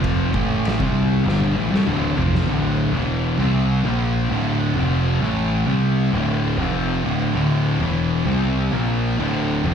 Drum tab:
RD |b---b-----------|----------------|----------------|----------------|
SD |----o---o--o---o|----------------|----------------|----------------|
T1 |---------o------|----------------|----------------|----------------|
T2 |------------o---|----------------|----------------|----------------|
FT |--------------o-|----------------|----------------|----------------|
BD |o-o--o----------|----------------|----------------|----------------|